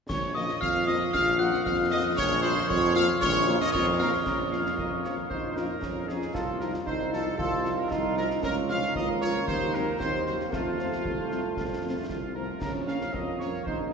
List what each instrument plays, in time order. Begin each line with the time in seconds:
0.09 tuba A#1, trombone section A#2 F4, trumpet section C#5, glockenspiel C#6, concert bass drum, snare, crash
0.35 french horn section F3 A#3 F4, trumpet section D#5, glockenspiel D#6
0.49 snare
0.61 tuba F2, trumpet section F5, glockenspiel F6, concert bass drum
0.87 french horn section F3 A#3 F4, trumpet section D#5, glockenspiel D#6, snare
1.13 tuba A#1, trumpet section F5, glockenspiel F6, concert bass drum, snare
1.38 french horn section F3 A#3 F4, trumpet section F#5, glockenspiel F#6, snare
1.54 snare
1.64 tuba F2, trumpet section F5, glockenspiel F6, concert bass drum, snare
1.91 french horn section F3 A#3 F4, trumpet section D#5, glockenspiel D#6
2.17 tuba A#1, trumpet section C#5, glockenspiel C#6, concert bass drum, snare
2.42 french horn section F3 A#3 F4, trumpet section C5, glockenspiel C6
2.57 snare
2.68 tuba F2, trumpet section C#5, glockenspiel C#6, concert bass drum
2.95 french horn section F3 A#3 F4, trumpet section F5, glockenspiel F6, snare
3.21 tuba A#1, trumpet section C#5, glockenspiel C#6, concert bass drum, snare
3.48 french horn section F3 A#3 F4, snare
3.61 trumpet section D#5, glockenspiel D#6, snare
3.73 tuba F2, trumpet section F4 C#5, glockenspiel C#6, concert bass drum, snare
3.99 french horn section F3 A#3 F4, trumpet section A#4 F5, glockenspiel F6
4.26 tuba A#1, euphonium C#4, trumpet section A#4, concert bass drum, snare, crash
4.51 french horn section F3 C#4 F4, trumpet section F5, snare
4.66 snare
4.77 tuba F2, euphonium A#3, trumpet section D#5, concert bass drum
5.03 french horn section F3 C#4 F4, trumpet section C#5, snare
5.29 tuba A#1, euphonium D#4, trumpet section C5, concert bass drum
5.56 french horn section F3 C#4 F4, trumpet section A#4, snare
5.82 tuba F2, euphonium C#4, concert bass drum, snare
6.08 french horn section F3 C#4 F4, euphonium D#4, trumpet section G#4, snare
6.22 snare
6.34 tuba C2, euphonium F4, trumpet section A4, concert bass drum, snare
6.60 french horn section F3 D#4 F4, trumpet section A#4, snare
6.74 snare
6.86 tuba C2, euphonium D#4, trumpet section C5, concert bass drum
7.13 french horn section F3 D#4 F4, trumpet section A4, snare
7.38 tuba C2, euphonium F4, trumpet section A4, concert bass drum
7.65 french horn section F3 D#4 F4, snare
7.78 trumpet section A#4
7.90 tuba C2, euphonium D#4, trumpet section F4, concert bass drum, snare
8.17 french horn section F3 D#4 F4, trumpet section A#4, snare
8.30 snare
8.43 tuba C#2, euphonium C#4, trumpet section A#4, concert bass drum, snare, crash
8.69 french horn section F3 C#4 F4, trumpet section F5, snare
8.82 snare
8.95 tuba C#2, euphonium A#3, trumpet section D#5, concert bass drum
9.21 french horn section F3 C#4 F4, trumpet section C#5, snare
9.47 tuba D#2, trumpet section C5, concert bass drum
9.74 french horn section F#3 C4 D#4, trumpet section A#4, snare
10.00 tuba D#2, euphonium C4, trumpet section C5, concert bass drum, snare
10.26 french horn section F#3 C4 D#4, trumpet section C5, snare
10.40 snare
10.52 tuba F2, euphonium A3, trumpet section F4, concert bass drum, snare
10.79 french horn section F3 A3 C4, snare
10.92 snare
11.05 tuba C2, concert bass drum
11.31 french horn section F3 A3 C4, snare
11.57 tuba F2, concert bass drum, snare
11.84 french horn section F3 A3 C4
12.09 tuba C2, trumpet section F4, concert bass drum, snare
12.35 french horn section F3 A3 C4, trumpet section A#4
12.61 tuba A#1, euphonium C#4, trumpet section A#4, concert bass drum, snare, crash
12.87 french horn section F3 A#3 C#4, trumpet section F5, snare
13.01 snare
13.13 tuba F2, euphonium A#3, trumpet section D#5, concert bass drum
13.39 french horn section F3 A#3 C#4, trumpet section C#5, snare
13.66 tuba A#1, euphonium D#4, trumpet section C5, concert bass drum